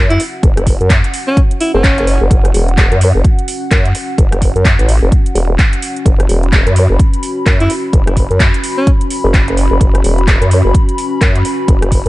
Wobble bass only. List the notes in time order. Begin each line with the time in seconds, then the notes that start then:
Already playing: F#2
0.43 F#1
0.57 F#1
0.81 F#2
1.74 F#1
2.21 F#1
2.31 F#1
2.54 E1
2.92 F#2
3.15 F#1
3.71 F#2
4.18 F#1
4.32 F#1
4.56 F#2
4.79 A1
5.02 F#1
5.35 E1
6.06 F#1
6.29 E1
6.66 F#2
6.90 F#1
7.46 F#2
7.93 F#1
8.07 F#1
8.30 F#2
9.24 F#1
9.71 F#1
9.81 F#1
10.04 E1
10.41 F#2
10.65 F#1
11.21 F#2
11.68 F#1
11.82 F#1
12.06 F#2